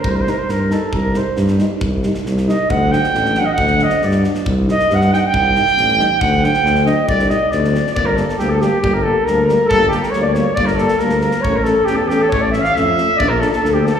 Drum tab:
SD |--o-o-o-|--o-ooo-|--ooooo-|--ooooo-|
BD |o-------|o-------|o-------|o-------|

SD |-ooooooo|--ooooo-|--ooooo-|--ooooo-|
BD |o-------|o-------|o-------|o-------|

SD |-oo-oooo|--ooo-o-|----o-o-|--ooo-o-|
BD |o-------|o-------|o-------|o-------|

SD |-ooooooo|--o-o-o-|--ooo-o-|--ooo-o-|
BD |o-------|o-------|o-------|o-------|